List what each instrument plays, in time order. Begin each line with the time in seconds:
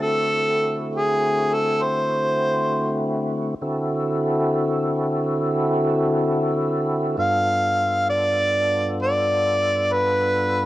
Already playing: tonewheel organ D3 A3 C4 E4 F#4
0.02 harmonica A4
0.96 harmonica G#4
1.54 harmonica A4
1.83 harmonica C5
3.61 tonewheel organ D3 C4 E4 F#4 A4
7.18 tonewheel organ G2 B3 D4 F4 A4, harmonica F5
8.10 harmonica D5
9.03 harmonica D5
9.93 harmonica B4